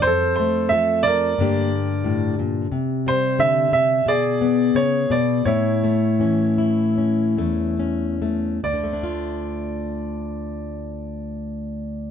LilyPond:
<<
  \new Staff \with { instrumentName = "Grand piano" } { \time 4/4 \key d \minor \tempo 4 = 83 << { c''8 c''8 e''8 d''2 r8 | r8 c''8 e''8 e''8 d''4 cis''8 d''8 | cis''2. r4 | d''1 | } \\ { a'4. bes'2 r8 | r2 gis'2 | e'2. r4 | r1 | } >> }
  \new Staff \with { instrumentName = "Steel-string acoustic guitar" } { \clef bass \time 4/4 \key d \minor << { r8 a8 a'8 a'8 <d bes d' g'>2 | r8 g4. r8 b4. | r8 a8 cis'8 e'8 cis'8 a8 cis'8 a8 | <d a d' f'>1 | } \\ { f,4 f4 g,4 a,8 bes,8 | c4 d8 c8 b,4 cis8 b,8 | a,4 e4. e,4. | d,1 | } >> }
>>